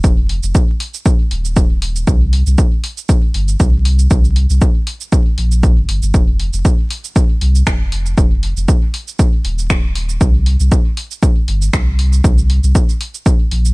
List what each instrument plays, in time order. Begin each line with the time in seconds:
0.04 sub bass F1, kick, shaker
0.29 open hi-hat
0.43 sub bass F1, shaker
0.55 kick, shaker
0.80 open hi-hat
0.94 shaker
1.06 kick, shaker
1.31 sub bass D#1, open hi-hat
1.45 shaker
1.57 kick, shaker
1.82 open hi-hat
1.96 shaker
2.07 sub bass C2, kick, shaker
2.33 open hi-hat
2.47 sub bass C2, shaker
2.58 kick, shaker
2.84 open hi-hat
2.97 shaker
3.09 kick, shaker
3.34 sub bass G1, open hi-hat
3.48 shaker
3.60 sub bass C2, kick, shaker
3.85 open hi-hat
3.99 shaker
4.11 sub bass C2, kick, shaker
4.24 shaker
4.36 open hi-hat
4.50 sub bass C2, shaker
4.61 kick, shaker
4.87 open hi-hat
5.01 shaker
5.12 kick, shaker
5.38 sub bass A#1, open hi-hat
5.52 shaker
5.63 kick, shaker
5.77 sub bass G1
5.89 sub bass G1, open hi-hat
6.03 sub bass G1, shaker
6.14 sub bass F1, kick, shaker
6.40 open hi-hat
6.53 sub bass F1, shaker
6.65 kick, shaker
6.90 open hi-hat
7.04 shaker
7.16 kick, shaker
7.41 sub bass C2, open hi-hat
7.55 shaker
7.67 sub bass F1, finger snap, kick, shaker
7.92 open hi-hat
8.06 shaker
8.18 sub bass F1, kick, shaker
8.43 open hi-hat
8.57 sub bass F1, shaker
8.68 kick, shaker
8.94 open hi-hat
9.08 shaker
9.19 kick, shaker
9.45 sub bass D#1, open hi-hat
9.58 shaker
9.70 finger snap, kick, shaker
9.95 open hi-hat
10.09 shaker
10.21 sub bass C2, kick, shaker
10.46 open hi-hat
10.60 sub bass C2, shaker
10.72 kick, shaker
10.97 open hi-hat
11.11 shaker
11.23 kick, shaker
11.48 sub bass G1, open hi-hat
11.62 shaker
11.73 sub bass C2, finger snap, kick, shaker
11.99 open hi-hat
12.13 shaker
12.24 sub bass C2, kick, shaker
12.38 shaker
12.50 open hi-hat
12.63 sub bass C2, shaker
12.75 kick, shaker
12.89 shaker
13.01 open hi-hat
13.14 shaker
13.26 kick, shaker
13.51 sub bass A#1, open hi-hat
13.65 shaker